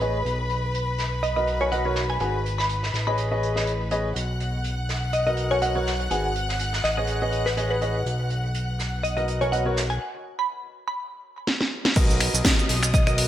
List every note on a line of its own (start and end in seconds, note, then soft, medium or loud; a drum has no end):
0.00 0.23 A1 medium
0.00 0.17 G#4 medium
0.00 0.31 B4 medium
0.00 4.17 B4 medium
0.00 0.17 B4 medium
0.00 0.17 C#5 medium
0.00 0.17 D#5 medium
0.00 4.17 B5 medium
0.00 closed hi-hat medium
0.25 2.18 B1 medium
0.25 closed hi-hat medium
0.50 closed hi-hat medium
0.75 closed hi-hat medium
0.98 snare soft
0.98 closed hi-hat medium
1.23 1.32 D#5 medium
1.23 closed hi-hat medium
1.36 1.57 F#4 medium
1.36 1.57 A#4 medium
1.36 1.57 B4 medium
1.36 1.57 D#5 medium
1.36 1.43 D#5 medium
1.36 closed hi-hat soft
1.47 closed hi-hat medium
1.60 1.70 F#4 medium
1.60 1.70 A#4 medium
1.60 1.70 B4 medium
1.60 1.70 C#5 medium
1.60 1.70 G#5 medium
1.60 closed hi-hat soft
1.72 1.83 F#4 medium
1.72 1.83 A#4 medium
1.72 1.83 B4 medium
1.72 1.83 D#5 medium
1.72 1.92 F#5 medium
1.72 closed hi-hat medium
1.85 1.99 F#4 medium
1.85 1.99 A#4 medium
1.85 1.99 B4 medium
1.85 1.99 C#5 medium
1.95 snare soft
1.95 closed hi-hat medium
2.09 2.26 G#5 medium
2.09 closed hi-hat soft
2.20 2.91 G#1 medium
2.20 2.36 F#4 medium
2.20 2.36 G#4 medium
2.20 2.36 B4 medium
2.20 2.36 G#5 medium
2.20 closed hi-hat medium
2.46 closed hi-hat medium
2.58 2.77 B5 medium
2.58 snare soft
2.69 closed hi-hat medium
2.83 snare soft
2.94 4.13 A1 medium
2.94 snare soft
2.94 closed hi-hat medium
3.07 3.27 G#4 medium
3.07 3.27 B4 medium
3.07 3.27 C#5 medium
3.07 3.27 D#5 medium
3.07 3.56 B5 medium
3.18 closed hi-hat medium
3.31 3.53 G#4 medium
3.31 3.53 B4 medium
3.31 3.53 C#5 medium
3.31 3.53 D#5 medium
3.43 closed hi-hat medium
3.56 3.69 G#4 medium
3.56 3.69 B4 medium
3.56 3.69 C#5 medium
3.56 3.69 D#5 medium
3.56 snare soft
3.67 closed hi-hat medium
3.91 4.07 G#4 medium
3.91 4.07 B4 medium
3.91 4.07 C#5 medium
3.91 4.07 D#5 medium
3.91 closed hi-hat medium
4.16 6.09 B1 medium
4.16 10.01 F#5 medium
4.16 10.01 F#6 medium
4.16 closed hi-hat medium
4.40 closed hi-hat medium
4.64 closed hi-hat medium
4.89 snare soft
4.89 closed hi-hat medium
5.13 5.22 D#5 medium
5.13 closed hi-hat medium
5.26 5.47 F#4 medium
5.26 5.47 A#4 medium
5.26 5.47 B4 medium
5.26 5.47 D#5 medium
5.26 5.34 D#5 medium
5.26 closed hi-hat soft
5.37 closed hi-hat medium
5.51 5.60 F#4 medium
5.51 5.60 A#4 medium
5.51 5.60 B4 medium
5.51 5.60 C#5 medium
5.51 5.60 G#5 medium
5.51 closed hi-hat soft
5.62 5.73 F#4 medium
5.62 5.73 A#4 medium
5.62 5.73 B4 medium
5.62 5.73 D#5 medium
5.62 5.82 F#5 medium
5.62 closed hi-hat medium
5.75 5.89 F#4 medium
5.75 5.89 A#4 medium
5.75 5.89 B4 medium
5.75 5.89 C#5 medium
5.86 snare soft
5.86 closed hi-hat medium
6.00 closed hi-hat soft
6.11 6.82 G#1 medium
6.11 6.26 F#4 medium
6.11 6.26 G#4 medium
6.11 6.26 B4 medium
6.11 6.26 G#5 medium
6.11 closed hi-hat medium
6.36 closed hi-hat medium
6.49 snare soft
6.59 closed hi-hat medium
6.73 snare soft
6.84 8.04 A1 medium
6.84 6.92 D#5 medium
6.84 snare soft
6.84 closed hi-hat medium
6.97 7.18 G#4 medium
6.97 7.18 B4 medium
6.97 7.18 C#5 medium
6.97 7.18 D#5 medium
6.97 7.04 D#5 medium
7.07 closed hi-hat medium
7.22 7.45 G#4 medium
7.22 7.45 B4 medium
7.22 7.45 C#5 medium
7.22 7.45 D#5 loud
7.32 closed hi-hat medium
7.46 7.65 B4 medium
7.46 snare medium
7.57 7.73 G#4 medium
7.57 7.73 B4 medium
7.57 7.73 C#5 medium
7.57 7.73 D#5 loud
7.57 closed hi-hat medium
7.71 8.11 B4 medium
7.81 7.97 G#4 medium
7.81 7.97 B4 medium
7.81 7.97 C#5 medium
7.81 7.97 D#5 medium
7.81 closed hi-hat medium
8.06 9.99 B1 medium
8.06 closed hi-hat medium
8.30 closed hi-hat medium
8.55 closed hi-hat medium
8.79 snare soft
8.79 closed hi-hat medium
9.03 9.12 D#5 medium
9.03 closed hi-hat medium
9.17 9.37 F#4 medium
9.17 9.37 A#4 medium
9.17 9.37 B4 medium
9.17 9.24 D#5 medium
9.17 9.37 D#5 medium
9.17 closed hi-hat soft
9.28 closed hi-hat medium
9.41 9.51 F#4 medium
9.41 9.51 A#4 medium
9.41 9.51 B4 medium
9.41 9.50 C#5 medium
9.41 9.51 G#5 medium
9.41 closed hi-hat soft
9.52 9.64 F#4 medium
9.52 9.64 A#4 medium
9.52 9.64 B4 medium
9.52 9.64 D#5 medium
9.52 9.72 F#5 medium
9.52 closed hi-hat medium
9.66 9.79 F#4 medium
9.66 9.79 A#4 medium
9.66 9.79 B4 medium
9.66 9.79 C#5 medium
9.76 snare soft
9.76 closed hi-hat medium
9.90 10.06 G#5 medium
9.90 closed hi-hat soft
10.39 10.58 B5 medium
10.88 11.36 B5 medium
11.47 snare medium
11.61 snare medium
11.85 snare medium
11.96 12.29 B1 medium
11.96 12.69 F#4 loud
11.96 12.69 A#4 medium
11.96 12.69 B4 medium
11.96 12.69 D#5 loud
11.96 13.28 D#5 medium
11.96 13.28 D#6 medium
11.96 kick loud
11.96 closed hi-hat medium
11.96 crash loud
11.96 cabasa medium
12.10 cabasa soft
12.20 finger snap medium
12.20 closed hi-hat medium
12.20 open hi-hat loud
12.34 12.43 B1 medium
12.34 cabasa medium
12.45 kick loud
12.45 snare loud
12.45 closed hi-hat medium
12.45 cabasa medium
12.59 cabasa soft
12.69 13.27 B1 medium
12.69 snare soft
12.69 closed hi-hat medium
12.69 open hi-hat medium
12.83 finger snap medium
12.83 cabasa medium
12.93 13.02 D#5 medium
12.93 kick loud
12.93 closed hi-hat medium
12.93 cabasa medium
13.07 13.27 F#4 medium
13.07 13.27 A#4 medium
13.07 13.27 B4 medium
13.07 13.14 D#5 medium
13.07 13.27 D#5 medium
13.07 finger snap medium
13.07 closed hi-hat soft
13.07 cabasa soft
13.18 closed hi-hat medium
13.18 open hi-hat loud